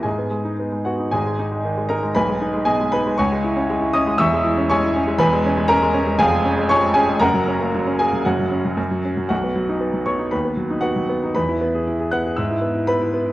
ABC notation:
X:1
M:2/4
L:1/16
Q:1/4=118
K:G#m
V:1 name="Grand piano"
[Gdg]6 [Ff]2 | [Gdg]6 [Aa]2 | [Bgb]4 [Gdg]2 [Bb]2 | [cgc']6 [dd']2 |
[ec'e']4 [cgc']2 z2 | [K:B] [Bgb]4 [Aa]4 | [G^eg]4 [cgc']2 [Gg]2 | [Afa]6 [Gg]2 |
[Fcf]6 z2 | [Ff]6 [cc']2 | [Bb]4 [Ff]4 | [Bb]6 [ff']2 |
[ee']4 [Bb]4 |]
V:2 name="Grand piano" clef=bass
G,, B, G, D B, G, B, D | [G,,,G,,] G, D G, D, G, D G, | B,,, G, D G, B,, G, D G, | C,, G, E C G, E C G, |
[E,,,E,,] G, E C G, E C G, | [K:B] [E,,,E,,] G, C G, C G, C G, | [^E,,,^E,,] G, C G, ^E, G, C G, | [F,,,F,,] F, C A, F, C A, F, |
[F,,,F,,] F, C F, F,, F, C F, | B,,, B, F, D B, F, B, D | D,, B, F, D B, F, B, D | E,, E B, G E G B, G |
G,, E B, E B, E B, E |]